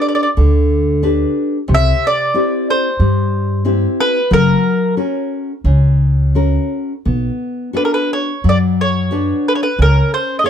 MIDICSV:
0, 0, Header, 1, 4, 480
1, 0, Start_track
1, 0, Key_signature, 2, "minor"
1, 0, Tempo, 656455
1, 1243, Time_signature, 4, 2, 24, 8
1, 3633, Tempo, 694444
1, 6033, Tempo, 662252
1, 7525, End_track
2, 0, Start_track
2, 0, Title_t, "Mandolin"
2, 0, Program_c, 0, 25
2, 11, Note_on_c, 0, 74, 53
2, 54, Note_off_c, 0, 74, 0
2, 62, Note_on_c, 0, 74, 49
2, 100, Note_off_c, 0, 74, 0
2, 109, Note_on_c, 0, 74, 55
2, 158, Note_off_c, 0, 74, 0
2, 167, Note_on_c, 0, 74, 47
2, 215, Note_off_c, 0, 74, 0
2, 1276, Note_on_c, 0, 76, 100
2, 1506, Note_off_c, 0, 76, 0
2, 1513, Note_on_c, 0, 74, 83
2, 1974, Note_off_c, 0, 74, 0
2, 1977, Note_on_c, 0, 72, 69
2, 2652, Note_off_c, 0, 72, 0
2, 2928, Note_on_c, 0, 71, 91
2, 3166, Note_off_c, 0, 71, 0
2, 3169, Note_on_c, 0, 70, 88
2, 3613, Note_off_c, 0, 70, 0
2, 5567, Note_on_c, 0, 71, 59
2, 5614, Note_off_c, 0, 71, 0
2, 5624, Note_on_c, 0, 70, 53
2, 5666, Note_off_c, 0, 70, 0
2, 5686, Note_on_c, 0, 71, 57
2, 5816, Note_off_c, 0, 71, 0
2, 5819, Note_on_c, 0, 73, 66
2, 6053, Note_off_c, 0, 73, 0
2, 6069, Note_on_c, 0, 74, 68
2, 6131, Note_off_c, 0, 74, 0
2, 6301, Note_on_c, 0, 73, 65
2, 6786, Note_off_c, 0, 73, 0
2, 6789, Note_on_c, 0, 71, 61
2, 6828, Note_off_c, 0, 71, 0
2, 6840, Note_on_c, 0, 73, 55
2, 6877, Note_off_c, 0, 73, 0
2, 6894, Note_on_c, 0, 71, 70
2, 7026, Note_off_c, 0, 71, 0
2, 7032, Note_on_c, 0, 70, 77
2, 7261, Note_off_c, 0, 70, 0
2, 7264, Note_on_c, 0, 72, 70
2, 7427, Note_off_c, 0, 72, 0
2, 7446, Note_on_c, 0, 75, 52
2, 7485, Note_off_c, 0, 75, 0
2, 7495, Note_on_c, 0, 73, 72
2, 7525, Note_off_c, 0, 73, 0
2, 7525, End_track
3, 0, Start_track
3, 0, Title_t, "Nylon-string guitar"
3, 0, Program_c, 1, 24
3, 0, Note_on_c, 1, 62, 42
3, 0, Note_on_c, 1, 67, 39
3, 0, Note_on_c, 1, 71, 45
3, 175, Note_off_c, 1, 62, 0
3, 178, Note_off_c, 1, 67, 0
3, 178, Note_off_c, 1, 71, 0
3, 269, Note_on_c, 1, 50, 59
3, 741, Note_off_c, 1, 50, 0
3, 751, Note_on_c, 1, 62, 45
3, 755, Note_on_c, 1, 67, 44
3, 757, Note_on_c, 1, 71, 50
3, 1141, Note_off_c, 1, 62, 0
3, 1144, Note_off_c, 1, 67, 0
3, 1144, Note_off_c, 1, 71, 0
3, 1227, Note_on_c, 1, 48, 61
3, 1699, Note_off_c, 1, 48, 0
3, 1711, Note_on_c, 1, 60, 47
3, 1716, Note_on_c, 1, 64, 40
3, 1719, Note_on_c, 1, 67, 50
3, 2095, Note_off_c, 1, 60, 0
3, 2096, Note_off_c, 1, 64, 0
3, 2099, Note_off_c, 1, 67, 0
3, 2192, Note_on_c, 1, 55, 59
3, 2656, Note_off_c, 1, 55, 0
3, 2667, Note_on_c, 1, 60, 48
3, 2671, Note_on_c, 1, 64, 44
3, 2673, Note_on_c, 1, 67, 53
3, 3054, Note_off_c, 1, 60, 0
3, 3055, Note_off_c, 1, 64, 0
3, 3058, Note_off_c, 1, 67, 0
3, 3149, Note_on_c, 1, 54, 59
3, 3617, Note_off_c, 1, 54, 0
3, 3634, Note_on_c, 1, 61, 42
3, 3634, Note_on_c, 1, 66, 35
3, 3639, Note_on_c, 1, 70, 45
3, 4008, Note_off_c, 1, 61, 0
3, 4008, Note_off_c, 1, 66, 0
3, 4011, Note_off_c, 1, 70, 0
3, 4101, Note_on_c, 1, 49, 53
3, 4574, Note_off_c, 1, 49, 0
3, 4586, Note_on_c, 1, 61, 38
3, 4590, Note_on_c, 1, 66, 35
3, 4594, Note_on_c, 1, 70, 45
3, 4979, Note_off_c, 1, 61, 0
3, 4981, Note_off_c, 1, 66, 0
3, 4982, Note_off_c, 1, 70, 0
3, 5074, Note_on_c, 1, 59, 50
3, 5541, Note_off_c, 1, 59, 0
3, 5544, Note_on_c, 1, 66, 37
3, 5551, Note_on_c, 1, 62, 45
3, 5551, Note_on_c, 1, 71, 34
3, 5931, Note_off_c, 1, 66, 0
3, 5934, Note_off_c, 1, 71, 0
3, 5936, Note_off_c, 1, 62, 0
3, 6033, Note_on_c, 1, 54, 58
3, 6508, Note_off_c, 1, 54, 0
3, 6517, Note_on_c, 1, 66, 44
3, 6525, Note_on_c, 1, 62, 50
3, 6526, Note_on_c, 1, 71, 40
3, 6906, Note_off_c, 1, 66, 0
3, 6911, Note_off_c, 1, 62, 0
3, 6911, Note_off_c, 1, 71, 0
3, 7009, Note_on_c, 1, 61, 55
3, 7465, Note_off_c, 1, 61, 0
3, 7479, Note_on_c, 1, 68, 42
3, 7485, Note_on_c, 1, 73, 37
3, 7485, Note_on_c, 1, 77, 48
3, 7525, Note_off_c, 1, 68, 0
3, 7525, Note_off_c, 1, 73, 0
3, 7525, Note_off_c, 1, 77, 0
3, 7525, End_track
4, 0, Start_track
4, 0, Title_t, "Upright bass"
4, 0, Program_c, 2, 32
4, 273, Note_on_c, 2, 38, 77
4, 903, Note_off_c, 2, 38, 0
4, 1237, Note_on_c, 2, 36, 87
4, 1395, Note_off_c, 2, 36, 0
4, 2190, Note_on_c, 2, 43, 82
4, 2815, Note_off_c, 2, 43, 0
4, 3154, Note_on_c, 2, 30, 89
4, 3309, Note_off_c, 2, 30, 0
4, 4099, Note_on_c, 2, 37, 72
4, 4735, Note_off_c, 2, 37, 0
4, 5078, Note_on_c, 2, 35, 77
4, 5234, Note_off_c, 2, 35, 0
4, 6033, Note_on_c, 2, 42, 71
4, 6665, Note_off_c, 2, 42, 0
4, 7008, Note_on_c, 2, 37, 82
4, 7163, Note_off_c, 2, 37, 0
4, 7525, End_track
0, 0, End_of_file